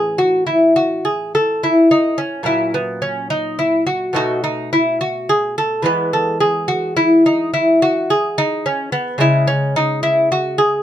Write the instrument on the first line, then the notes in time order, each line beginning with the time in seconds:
lute
Already playing: A2 E3 C#4 G#4
0.18 F#4
0.47 E4
0.76 F#4
1.05 G#4
1.35 A4
1.63 E4
1.91 D#4
2.18 C#4
2.43 A#2 F#3 C#4 E4
2.74 B3
3.02 C#4
3.30 D#4
3.59 E4
3.87 F#4
4.13 B2 A3 D#4 F#4
4.44 D#4
4.73 E4
5.01 F#4
5.29 G#4
5.58 A4
5.82 E3 G#3 B3 B4
6.13 A4
6.40 G#4
6.68 F#4
6.97 E4
7.26 D#4
7.54 E4
7.82 F#4
8.10 G#4
8.38 D#4
8.66 C#4
8.92 B3
9.18 C#3 G#3 C#4 E4
9.47 C#4
9.76 D#4
10.03 E4
10.32 F#4
10.58 G#4